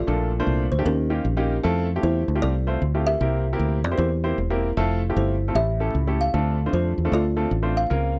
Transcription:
0.00 0.68 F4 medium
0.00 0.68 A4 medium
0.00 0.74 D5 loud
0.07 0.41 A#1 loud
0.07 0.68 A#2 medium
0.07 0.30 A3 medium
0.07 0.30 A#3 medium
0.07 0.30 D4 medium
0.07 0.30 F4 medium
0.07 0.30 A4 medium
0.40 0.64 A3 medium
0.40 0.64 A#3 medium
0.40 0.64 D4 medium
0.40 0.64 F4 medium
0.40 0.64 C5 medium
0.47 0.68 C2 medium
0.72 0.84 D2 medium
0.72 0.86 C5 medium
0.78 0.86 A3 medium
0.78 0.86 A#3 medium
0.78 0.86 D4 medium
0.78 0.86 F4 medium
0.78 0.86 G4 medium
0.85 1.19 D#2 loud
0.85 1.46 D#3 medium
0.85 1.60 C#4 medium
0.85 1.60 G4 medium
0.85 1.46 A#4 medium
1.10 1.23 A#3 medium
1.10 1.23 C#4 medium
1.10 1.23 D#4 medium
1.10 1.23 F4 medium
1.10 1.23 G4 medium
1.25 1.58 A#1 medium
1.37 1.56 A#3 medium
1.37 1.56 C#4 medium
1.37 1.55 D#4 medium
1.37 1.55 F4 medium
1.37 1.55 G4 medium
1.63 1.98 F2 loud
1.63 1.87 A3 medium
1.63 1.87 C4 medium
1.63 1.86 E4 medium
1.63 1.86 F4 medium
1.63 1.86 A4 loud
1.96 2.21 A3 medium
1.96 2.21 C4 medium
1.96 2.21 E4 medium
1.96 2.21 F4 medium
1.96 2.21 G4 medium
2.03 2.25 E2 medium
2.03 2.78 E4 medium
2.03 2.42 A4 medium
2.03 2.44 C5 medium
2.28 2.40 D2 medium
2.35 2.52 A3 medium
2.35 2.52 C4 medium
2.35 2.52 E4 medium
2.35 2.53 F4 medium
2.35 2.53 G4 medium
2.42 2.76 C2 loud
2.42 3.17 A4 medium
2.42 3.08 D5 loud
2.67 2.80 A3 medium
2.67 2.80 C4 medium
2.67 2.80 E4 medium
2.67 2.80 F4 medium
2.67 2.80 C5 medium
2.82 3.15 D2 medium
2.94 3.13 A3 medium
2.94 3.12 C4 medium
2.94 3.13 E4 medium
2.94 3.13 F4 medium
2.94 3.13 G4 medium
3.07 3.81 G4 medium
3.07 3.82 A#4 medium
3.07 3.87 E5 loud
3.21 3.54 C2 loud
3.21 3.81 C3 medium
3.21 3.43 A#3 medium
3.21 3.43 C4 medium
3.21 3.43 E4 medium
3.21 3.43 G4 medium
3.21 3.43 A#4 medium
3.53 3.77 A#3 medium
3.53 3.77 C4 medium
3.53 3.77 E4 medium
3.53 3.77 G4 medium
3.53 3.78 A#4 medium
3.59 3.84 D2 medium
3.84 3.97 F2 medium
3.84 3.98 D5 loud
3.91 4.09 A#3 medium
3.91 4.09 C4 medium
3.91 4.09 E4 medium
3.91 4.09 G4 medium
3.91 4.09 C5 medium
3.98 4.32 E2 loud
3.98 4.73 E4 medium
3.98 4.73 G4 medium
3.98 4.59 C5 medium
4.24 4.37 A#3 medium
4.24 4.37 C4 medium
4.24 4.37 E4 medium
4.24 4.37 G4 medium
4.24 4.37 C5 medium
4.38 4.71 E1 medium
4.50 4.69 A#3 medium
4.50 4.69 C4 medium
4.50 4.69 E4 medium
4.50 4.69 G4 medium
4.50 4.69 A#4 medium
4.77 5.10 F1 loud
4.77 5.00 A3 medium
4.77 5.00 C4 medium
4.77 5.00 E4 medium
4.77 5.00 F4 medium
4.77 5.00 A4 loud
5.10 5.34 A3 medium
5.10 5.34 C4 medium
5.10 5.34 E4 medium
5.10 5.34 F4 medium
5.10 5.34 G4 medium
5.16 5.50 G1 medium
5.16 5.53 E4 medium
5.16 5.53 A4 medium
5.16 5.57 C5 medium
5.48 5.56 A3 medium
5.48 5.55 C4 medium
5.48 5.55 E4 medium
5.48 5.56 F4 medium
5.48 5.55 A4 medium
5.55 5.89 A1 loud
5.55 6.16 A2 medium
5.55 6.30 G4 medium
5.55 6.30 C#5 medium
5.55 6.22 E5 loud
5.80 5.93 A3 medium
5.80 5.93 C#4 medium
5.80 5.93 E4 medium
5.80 5.93 G4 medium
5.80 5.93 A4 medium
5.95 6.28 C#2 medium
6.07 6.26 A3 medium
6.07 6.25 C#4 medium
6.07 6.25 E4 medium
6.07 6.26 G4 medium
6.07 6.26 A4 medium
6.21 6.33 F5 medium
6.34 6.67 D2 loud
6.34 6.94 D3 medium
6.34 6.56 A3 medium
6.34 6.56 C4 medium
6.34 6.56 D4 medium
6.34 6.57 F4 medium
6.34 6.56 A4 medium
6.66 6.91 A3 medium
6.66 6.91 C4 medium
6.66 6.91 D4 medium
6.66 6.91 F4 medium
6.66 6.91 C5 medium
6.73 6.94 F2 medium
6.73 7.13 F4 medium
6.73 7.13 A4 medium
6.73 7.14 C5 medium
6.98 7.10 E2 medium
7.05 7.22 A3 medium
7.05 7.22 C4 medium
7.05 7.22 D4 medium
7.05 7.22 F4 medium
7.05 7.22 A4 medium
7.12 7.45 D2 medium
7.12 7.88 F4 medium
7.12 7.88 A4 medium
7.12 7.79 D5 loud
7.36 7.50 A3 medium
7.36 7.50 C4 medium
7.36 7.50 D4 medium
7.36 7.50 F4 medium
7.36 7.50 A4 medium
7.51 7.84 A1 loud
7.63 7.81 A3 medium
7.63 7.81 C4 medium
7.63 7.81 D4 medium
7.63 7.81 F4 medium
7.63 7.81 C5 medium
7.77 7.90 F5 loud
7.90 8.19 C#2 loud
7.90 8.19 C#3 medium
7.90 8.13 A#3 medium
7.90 8.13 C4 medium
7.90 8.13 C#4 medium
7.90 8.13 F4 medium
7.90 8.13 A#4 medium

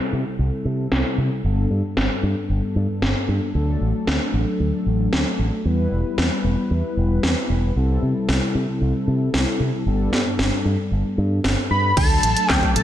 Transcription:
0.00 1.41 C3 medium
0.00 1.41 G3 medium
0.00 1.41 C4 medium
0.00 1.41 E4 medium
0.00 1.41 A4 medium
0.13 0.23 C3 medium
0.39 0.49 C2 medium
0.65 0.86 C3 medium
0.92 1.02 C2 medium
0.92 snare loud
1.18 1.28 C3 medium
1.44 1.65 G1 medium
1.44 3.52 G2 medium
1.44 3.52 G3 medium
1.44 3.52 B3 medium
1.44 3.52 D4 medium
1.44 3.52 A4 medium
1.71 1.81 G2 medium
1.97 2.07 G1 medium
1.97 snare loud
2.23 2.34 G2 medium
2.50 2.60 G1 medium
2.76 2.86 G2 medium
3.02 3.13 G1 medium
3.02 snare loud
3.29 3.39 G2 medium
3.55 3.76 D2 medium
3.55 5.62 F#3 medium
3.55 5.62 A3 medium
3.55 5.62 D4 medium
3.55 5.62 A4 medium
3.81 3.92 A1 medium
4.07 4.18 D2 medium
4.07 snare loud
4.34 4.44 A1 medium
4.60 4.70 D2 medium
4.86 5.07 A1 medium
5.13 5.23 D2 medium
5.13 snare loud
5.39 5.49 A1 medium
5.65 5.86 E2 medium
5.65 7.73 G3 medium
5.65 7.73 B3 medium
5.65 7.73 E4 medium
5.65 7.73 B4 medium
5.92 6.02 E1 medium
6.18 6.28 E2 medium
6.18 snare loud
6.44 6.55 E1 medium
6.71 6.81 E2 medium
6.97 7.18 E1 medium
7.23 7.34 E2 medium
7.23 snare loud
7.50 7.70 E1 medium
7.76 7.97 C2 medium
7.76 9.83 C3 medium
7.76 9.83 G3 medium
7.76 9.83 C4 medium
7.76 9.83 E4 medium
7.76 9.83 A4 medium
8.03 8.13 C3 medium
8.29 8.39 C2 medium
8.29 snare loud
8.55 8.65 C3 medium
8.81 8.92 C2 medium
9.08 9.28 C3 medium
9.34 9.44 C2 medium
9.34 snare loud
9.60 9.71 C3 medium
9.86 10.07 G1 loud
9.86 11.94 G2 medium
9.86 11.94 G3 medium
9.86 11.94 B3 medium
9.86 11.94 D4 medium
9.86 11.94 A4 medium
10.13 10.23 G2 medium
10.13 snare medium
10.39 10.49 G1 medium
10.39 snare loud
10.65 10.76 G2 medium
10.92 11.02 G1 medium
11.18 11.39 G2 loud
11.44 11.55 G1 medium
11.44 snare loud
11.71 11.91 G2 medium
11.71 11.95 B5 medium
11.97 12.18 D2 loud
11.97 12.33 F#3 medium
11.97 12.33 A3 medium
11.97 12.33 D4 medium
11.97 12.33 A4 medium
11.97 12.52 A5 loud
11.97 kick loud
11.97 closed hi-hat medium
11.97 crash loud
12.10 closed hi-hat soft
12.23 12.34 A1 medium
12.23 closed hi-hat loud
12.36 12.73 F#3 medium
12.36 12.73 A3 medium
12.36 12.73 D4 medium
12.36 12.73 A4 medium
12.36 closed hi-hat medium
12.50 12.60 D2 medium
12.50 12.72 G5 loud
12.50 kick loud
12.50 snare loud
12.50 clap loud
12.50 closed hi-hat medium
12.63 kick medium
12.63 closed hi-hat soft
12.76 12.83 A1 medium
12.76 12.83 F#3 medium
12.76 12.83 A3 medium
12.76 12.83 D4 medium
12.76 12.83 A4 loud
12.76 12.83 A5 loud
12.76 closed hi-hat loud

